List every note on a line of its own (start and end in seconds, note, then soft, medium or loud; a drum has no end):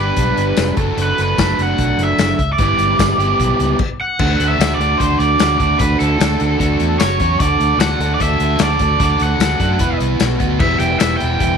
0.00 0.10 G1 medium
0.00 0.76 G3 medium
0.00 0.77 B3 medium
0.00 0.79 D4 medium
0.00 0.76 G4 medium
0.00 0.74 B4 medium
0.00 0.76 B4 medium
0.17 0.31 B1 medium
0.17 kick medium
0.17 closed hi-hat medium
0.37 0.51 G1 medium
0.37 closed hi-hat medium
0.57 0.71 F1 medium
0.57 snare loud
0.57 closed hi-hat medium
0.57 tambourine loud
0.77 0.91 F#1 medium
0.77 1.36 F#3 medium
0.77 1.37 A3 loud
0.77 1.39 D4 medium
0.77 1.38 A4 loud
0.77 kick loud
0.77 closed hi-hat medium
0.97 1.11 F#1 medium
0.97 closed hi-hat medium
1.03 1.21 B4 loud
1.18 1.32 F#1 medium
1.18 1.61 B4 medium
1.18 closed hi-hat medium
1.38 1.52 F#1 medium
1.38 2.37 F#3 medium
1.38 2.38 A3 medium
1.38 2.38 D4 medium
1.38 2.39 A4 medium
1.38 kick medium
1.38 snare loud
1.38 closed hi-hat medium
1.38 tambourine loud
1.59 1.72 F#1 medium
1.59 2.01 F#5 medium
1.59 closed hi-hat medium
1.78 1.92 B1 medium
1.78 kick medium
1.78 closed hi-hat medium
1.98 2.12 F#1 medium
1.98 closed hi-hat medium
2.04 2.52 E5 loud
2.18 2.32 F#1 medium
2.18 snare loud
2.18 closed hi-hat medium
2.18 tambourine loud
2.39 2.53 C#2 medium
2.39 kick medium
2.39 closed hi-hat medium
2.53 2.61 D5 medium
2.58 2.73 G1 loud
2.58 3.18 G3 loud
2.58 3.19 B3 loud
2.58 3.19 E4 loud
2.58 kick loud
2.58 closed hi-hat medium
2.63 3.18 G4 loud
2.63 3.78 D5 medium
2.78 2.92 G1 medium
2.78 closed hi-hat medium
2.99 3.13 G1 medium
2.99 kick medium
2.99 snare loud
2.99 closed hi-hat loud
2.99 tambourine loud
3.18 3.32 G1 loud
3.18 3.79 G3 medium
3.18 3.79 B3 medium
3.18 3.79 E4 medium
3.18 3.78 G4 medium
3.18 closed hi-hat medium
3.39 3.53 B1 medium
3.39 kick medium
3.39 closed hi-hat medium
3.59 3.73 C#2 medium
3.59 closed hi-hat medium
3.79 kick loud
3.79 crash medium
4.01 4.48 F#5 loud
4.19 4.35 D2 medium
4.19 4.57 D3 medium
4.19 4.58 A3 loud
4.19 4.59 D4 loud
4.19 4.60 F#4 loud
4.19 kick loud
4.19 crash loud
4.40 4.55 D2 medium
4.40 closed hi-hat medium
4.48 4.74 E5 medium
4.58 4.75 D2 medium
4.58 4.78 D3 medium
4.58 4.79 A3 medium
4.58 4.80 D4 medium
4.58 4.81 F#4 medium
4.58 snare loud
4.58 closed hi-hat loud
4.58 tambourine loud
4.75 4.94 D2 medium
4.75 5.01 D5 loud
4.80 4.99 D3 medium
4.80 5.00 A3 medium
4.80 5.01 D4 medium
4.80 5.01 F#4 medium
4.80 closed hi-hat medium
4.98 5.15 D2 medium
4.98 5.40 D3 loud
4.98 5.40 A3 loud
4.98 5.17 C5 medium
4.98 kick medium
4.98 closed hi-hat medium
5.02 5.42 D4 loud
5.02 5.43 F#4 loud
5.19 5.35 D2 medium
5.19 5.57 D5 loud
5.19 closed hi-hat medium
5.39 5.56 D2 medium
5.39 5.59 D3 medium
5.39 5.60 A3 medium
5.39 5.60 D4 medium
5.39 5.61 F#4 medium
5.39 snare loud
5.39 closed hi-hat loud
5.39 tambourine loud
5.58 5.76 D2 medium
5.58 5.79 D3 medium
5.58 5.80 A3 medium
5.58 5.80 D4 medium
5.58 5.81 F#4 medium
5.58 5.80 D5 medium
5.58 kick medium
5.58 closed hi-hat medium
5.78 5.95 D2 medium
5.78 6.18 D3 loud
5.78 6.18 A3 loud
5.78 6.19 D4 loud
5.78 6.20 F#4 loud
5.78 5.99 B4 loud
5.78 kick loud
5.78 closed hi-hat loud
5.99 6.16 D2 medium
5.99 7.03 A4 medium
5.99 closed hi-hat medium
6.19 6.36 D2 medium
6.19 6.38 D3 medium
6.19 6.40 A3 medium
6.19 6.40 D4 medium
6.19 6.42 F#4 medium
6.19 snare loud
6.19 closed hi-hat loud
6.19 tambourine loud
6.39 6.56 D2 medium
6.39 6.58 D3 medium
6.39 6.59 A3 medium
6.39 6.59 D4 loud
6.39 6.61 F#4 medium
6.39 closed hi-hat medium
6.59 6.76 D2 medium
6.59 6.98 D3 loud
6.59 6.99 A3 loud
6.59 6.99 D4 loud
6.59 7.01 F#4 loud
6.59 kick medium
6.59 closed hi-hat loud
6.80 6.96 E2 medium
6.80 closed hi-hat medium
7.00 7.16 F#1 medium
7.00 7.21 F#3 medium
7.00 7.20 C#4 medium
7.00 7.22 F#4 loud
7.00 7.40 C#5 medium
7.00 7.21 C#5 loud
7.00 snare loud
7.00 closed hi-hat loud
7.00 tambourine loud
7.20 7.36 E2 medium
7.20 7.41 F#3 medium
7.20 7.39 C#4 medium
7.20 7.43 F#4 medium
7.20 7.40 C#5 loud
7.20 kick medium
7.20 closed hi-hat medium
7.40 7.56 D2 loud
7.40 7.78 D3 medium
7.40 7.78 A3 loud
7.40 7.79 D4 loud
7.40 7.79 F#4 loud
7.40 7.79 A4 loud
7.40 7.80 D5 loud
7.40 kick loud
7.40 closed hi-hat loud
7.60 7.76 D2 medium
7.60 closed hi-hat medium
7.78 7.94 D2 medium
7.78 7.99 D3 medium
7.78 7.99 A3 medium
7.78 8.00 D4 medium
7.78 8.01 F#4 loud
7.78 8.01 A4 loud
7.78 8.14 F#5 medium
7.78 snare loud
7.78 closed hi-hat loud
7.78 tambourine loud
7.99 8.15 D2 medium
7.99 8.19 D3 medium
7.99 8.20 A3 medium
7.99 8.20 D4 medium
7.99 8.21 F#4 medium
7.99 8.21 A4 medium
7.99 closed hi-hat medium
8.14 8.21 D5 medium
8.20 8.36 D2 loud
8.20 8.58 D3 loud
8.20 8.59 A3 loud
8.20 8.60 D4 loud
8.20 8.61 F#4 loud
8.20 8.60 A4 loud
8.20 8.58 E5 loud
8.20 kick medium
8.20 closed hi-hat medium
8.40 8.56 D2 medium
8.40 closed hi-hat medium
8.59 8.76 D2 medium
8.59 8.79 D3 medium
8.59 8.80 A3 medium
8.59 8.80 D4 medium
8.59 8.80 F#4 medium
8.59 8.81 A4 medium
8.59 9.02 D5 medium
8.59 snare loud
8.59 closed hi-hat medium
8.59 tambourine loud
8.79 8.96 D2 medium
8.79 8.99 D3 medium
8.79 8.99 A3 medium
8.79 9.00 D4 medium
8.79 9.01 F#4 medium
8.79 9.02 A4 loud
8.79 kick medium
8.79 closed hi-hat medium
9.00 9.16 D2 medium
9.00 9.39 D3 loud
9.00 9.40 A3 medium
9.00 9.40 D4 loud
9.00 9.40 F#4 loud
9.00 9.41 A4 loud
9.00 kick loud
9.00 closed hi-hat medium
9.05 9.23 D5 medium
9.19 9.36 D2 medium
9.19 closed hi-hat medium
9.24 9.98 F#5 medium
9.39 9.55 D2 medium
9.39 9.58 D3 medium
9.39 9.59 A3 medium
9.39 9.59 D4 medium
9.39 9.60 F#4 medium
9.39 9.60 A4 medium
9.39 snare loud
9.39 closed hi-hat loud
9.39 tambourine loud
9.60 9.81 F#2 medium
9.60 9.79 D3 medium
9.60 9.79 A3 medium
9.60 9.79 D4 loud
9.60 9.80 F#4 loud
9.60 9.80 A4 medium
9.60 kick medium
9.60 closed hi-hat medium
9.79 9.95 E1 medium
9.79 10.19 E3 loud
9.79 10.20 B3 loud
9.79 10.19 E4 loud
9.79 11.57 B4 loud
9.79 kick medium
9.79 closed hi-hat loud
10.00 10.16 C2 medium
10.00 closed hi-hat medium
10.19 10.36 B1 medium
10.19 10.36 B2 medium
10.19 10.37 F#3 medium
10.19 10.39 B3 loud
10.19 10.38 F#4 loud
10.19 snare loud
10.19 closed hi-hat loud
10.19 tambourine loud
10.38 10.62 D2 medium
10.38 10.58 B2 medium
10.38 10.58 F#3 medium
10.38 10.59 B3 medium
10.38 10.59 F#4 loud
10.38 kick medium
10.38 closed hi-hat medium
10.58 10.76 E1 medium
10.58 10.98 E3 loud
10.58 10.99 G3 loud
10.58 10.99 B3 loud
10.58 11.00 E4 loud
10.58 10.79 E5 loud
10.58 kick loud
10.58 crash loud
10.80 10.96 E1 medium
10.80 10.99 G5 medium
10.80 closed hi-hat medium
10.99 11.17 E1 medium
10.99 11.19 E3 medium
10.99 11.20 G3 medium
10.99 11.20 B3 medium
10.99 11.21 E4 medium
10.99 11.17 E5 medium
10.99 snare loud
10.99 closed hi-hat loud
10.99 tambourine loud
11.17 11.40 E3 medium
11.17 11.40 G3 medium
11.17 11.39 B3 medium
11.17 11.41 E4 medium
11.17 11.57 G5 loud
11.17 closed hi-hat medium
11.22 11.37 E1 medium
11.40 11.56 E1 medium
11.40 11.57 E3 loud
11.40 11.57 G3 loud
11.40 11.57 B3 loud
11.40 11.57 E4 loud
11.40 kick medium
11.40 closed hi-hat medium